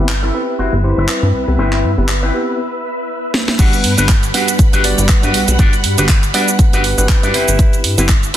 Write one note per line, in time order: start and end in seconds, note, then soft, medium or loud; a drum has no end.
0.00 0.31 G1 medium
0.00 3.55 B4 medium
0.00 3.55 E5 medium
0.09 clap loud
0.23 0.41 C4 medium
0.23 0.41 E4 medium
0.23 0.41 A4 medium
0.34 0.81 C4 medium
0.34 0.81 E4 medium
0.34 0.82 G4 medium
0.34 0.82 B4 medium
0.59 0.70 G1 soft
0.59 0.73 C4 medium
0.59 0.73 E4 medium
0.59 0.73 F#4 loud
0.73 0.94 G1 medium
0.84 1.06 B3 medium
0.84 1.06 C4 medium
0.84 1.06 E4 medium
0.84 1.06 G4 medium
0.84 1.07 C5 medium
0.84 muted clean electric guitar stroke soft
0.98 1.07 G1 medium
0.98 1.29 C4 medium
0.98 1.29 E4 medium
0.98 1.28 B4 medium
1.08 1.45 G3 medium
1.08 1.45 C4 medium
1.08 1.45 B4 medium
1.08 clap loud
1.23 1.32 G2 medium
1.34 1.45 C2 soft
1.48 1.57 C2 medium
1.48 1.58 B3 medium
1.48 1.59 C4 medium
1.48 1.59 E4 medium
1.48 1.59 G4 medium
1.48 1.59 B4 medium
1.59 1.85 G1 loud
1.59 1.91 C4 loud
1.59 1.91 E4 loud
1.59 1.91 B4 loud
1.73 clap soft
1.83 1.96 G2 loud
1.98 2.31 G1 medium
1.98 2.08 B3 medium
1.98 2.09 C4 medium
1.98 2.09 E4 medium
1.98 2.09 G4 medium
1.98 2.09 B4 medium
2.09 clap loud
2.23 2.41 C4 medium
2.23 2.41 E4 medium
2.23 2.41 B4 loud
2.33 2.59 B3 medium
2.33 2.59 C4 medium
2.33 2.59 E4 medium
2.33 2.59 G4 medium
2.33 2.59 B4 medium
3.34 snare medium
3.48 snare medium
3.59 3.85 G1 loud
3.59 3.93 G3 medium
3.59 7.30 G3 medium
3.59 3.92 B3 loud
3.59 3.73 D4 loud
3.59 3.92 D4 loud
3.59 3.73 F#4 loud
3.59 3.73 G4 loud
3.59 3.93 B4 loud
3.59 3.73 B4 loud
3.59 3.92 F#5 loud
3.59 7.30 F#5 medium
3.59 7.31 B5 medium
3.59 kick loud
3.59 closed hi-hat medium
3.59 crash loud
3.59 shaker medium
3.73 closed hi-hat soft
3.73 shaker soft
3.84 3.96 G2 loud
3.84 muted clean electric guitar stroke soft
3.84 open hi-hat loud
3.98 4.31 G1 medium
3.98 4.09 B3 medium
3.98 4.09 D4 medium
3.98 4.09 F#4 medium
3.98 4.09 G4 medium
3.98 4.09 B4 loud
3.98 closed hi-hat soft
3.98 shaker medium
4.09 kick loud
4.09 clap loud
4.09 closed hi-hat medium
4.09 shaker medium
4.23 muted clean electric guitar stroke soft
4.23 closed hi-hat soft
4.23 shaker soft
4.34 4.82 G3 medium
4.34 4.81 B3 medium
4.34 4.81 D4 medium
4.34 4.48 D4 medium
4.34 4.48 F#4 medium
4.34 4.48 G4 medium
4.34 4.48 B4 medium
4.34 4.82 B4 medium
4.34 4.81 F#5 medium
4.34 open hi-hat loud
4.48 closed hi-hat soft
4.48 shaker medium
4.59 4.70 G1 soft
4.59 muted clean electric guitar stroke soft
4.59 kick loud
4.59 closed hi-hat medium
4.59 shaker medium
4.73 4.94 G1 loud
4.73 4.84 D4 loud
4.73 4.84 F#4 loud
4.73 4.84 G4 loud
4.73 4.84 B4 loud
4.73 closed hi-hat soft
4.73 shaker soft
4.84 5.06 B3 medium
4.84 5.06 D4 medium
4.84 5.07 F#4 medium
4.84 5.07 G4 medium
4.84 5.07 D5 loud
4.84 open hi-hat loud
4.98 5.07 G1 loud
4.98 muted clean electric guitar stroke soft
4.98 closed hi-hat soft
4.98 shaker medium
5.09 5.45 G3 medium
5.09 kick loud
5.09 clap loud
5.09 closed hi-hat medium
5.09 shaker medium
5.23 5.32 G2 medium
5.23 5.41 D4 medium
5.23 5.41 F#4 medium
5.23 5.41 G4 medium
5.23 5.41 B4 medium
5.23 closed hi-hat soft
5.23 shaker soft
5.34 5.45 B1 soft
5.34 open hi-hat loud
5.48 5.57 B1 medium
5.48 5.59 B3 medium
5.48 5.59 D4 medium
5.48 5.59 F#4 medium
5.48 5.59 G4 medium
5.48 5.59 B4 medium
5.48 closed hi-hat soft
5.48 shaker medium
5.59 5.86 G1 loud
5.59 5.73 D4 loud
5.59 5.73 F#4 loud
5.59 5.73 G4 loud
5.59 5.73 D5 loud
5.59 kick loud
5.59 closed hi-hat medium
5.59 shaker medium
5.73 closed hi-hat soft
5.73 shaker soft
5.84 5.96 G2 loud
5.84 muted clean electric guitar stroke soft
5.84 open hi-hat loud
5.98 6.31 G1 medium
5.98 6.09 B3 medium
5.98 6.09 D4 medium
5.98 6.09 F#4 medium
5.98 6.09 G4 medium
5.98 6.09 B4 loud
5.98 6.09 B4 medium
5.98 closed hi-hat soft
5.98 shaker medium
6.09 kick loud
6.09 clap loud
6.09 closed hi-hat medium
6.09 shaker medium
6.23 muted clean electric guitar stroke soft
6.23 closed hi-hat soft
6.23 shaker soft
6.34 6.82 G3 medium
6.34 6.82 B3 medium
6.34 6.82 D4 medium
6.34 6.48 D4 medium
6.34 6.48 F#4 medium
6.34 6.48 G4 medium
6.34 6.82 B4 medium
6.34 6.48 D5 loud
6.34 6.82 F#5 medium
6.34 open hi-hat loud
6.48 closed hi-hat soft
6.48 shaker medium
6.59 kick loud
6.59 closed hi-hat medium
6.59 shaker medium
6.73 6.94 G1 loud
6.73 6.84 D4 medium
6.73 6.84 F#4 loud
6.73 6.84 G4 loud
6.73 6.84 B4 loud
6.73 closed hi-hat soft
6.73 shaker soft
6.84 6.96 B3 medium
6.84 6.96 D4 medium
6.84 6.96 F#4 medium
6.84 6.96 G4 medium
6.84 6.96 B4 medium
6.84 open hi-hat loud
6.98 7.07 G1 loud
6.98 7.07 B3 medium
6.98 7.07 D4 medium
6.98 7.07 F#4 medium
6.98 7.07 G4 medium
6.98 7.07 B4 medium
6.98 muted clean electric guitar stroke soft
6.98 closed hi-hat soft
6.98 shaker medium
7.09 7.95 G4 medium
7.09 7.95 B4 medium
7.09 kick loud
7.09 clap loud
7.09 closed hi-hat medium
7.09 shaker medium
7.23 7.32 G2 medium
7.23 7.34 D4 medium
7.23 7.34 F#4 medium
7.23 7.33 G4 medium
7.23 7.34 D5 medium
7.23 closed hi-hat soft
7.23 shaker soft
7.34 7.45 G1 soft
7.34 7.75 C4 medium
7.34 7.75 E4 medium
7.34 7.75 G4 medium
7.34 7.75 B4 medium
7.34 8.37 E5 medium
7.34 open hi-hat loud
7.48 7.57 G1 medium
7.48 closed hi-hat soft
7.48 shaker medium
7.59 7.85 G1 loud
7.59 kick loud
7.59 closed hi-hat medium
7.59 shaker medium
7.73 closed hi-hat soft
7.73 shaker soft
7.84 7.96 G2 loud
7.84 muted clean electric guitar stroke soft
7.84 open hi-hat loud
7.98 8.31 G1 medium
7.98 8.09 B3 medium
7.98 8.09 C4 medium
7.98 8.09 E4 medium
7.98 8.09 G4 medium
7.98 8.09 B4 loud
7.98 closed hi-hat soft
7.98 shaker medium
8.09 kick loud
8.09 clap loud
8.09 closed hi-hat medium
8.09 shaker medium
8.23 muted clean electric guitar stroke soft
8.23 closed hi-hat soft
8.23 shaker soft
8.34 8.37 C4 medium
8.34 8.37 B4 loud